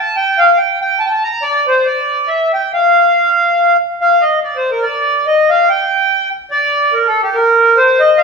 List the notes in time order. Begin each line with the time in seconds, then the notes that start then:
Already playing: A5
0.16 G5
0.38 F5
0.57 G5
0.81 G5
0.99 A5
1.06 G5
1.11 A5
1.24 A#5
1.42 D5
1.67 C5
1.86 D5
2.28 E5
2.53 G5
2.73 F5
4.01 F5
4.21 D#5
4.44 D5
4.56 C5
4.71 A#4
4.82 D5
5.27 D#5
5.50 F5
5.69 G5
6.51 D5
6.93 A#4
7.07 A4
7.22 G4
7.34 A#4
7.77 C5
8.00 D#5
8.18 F5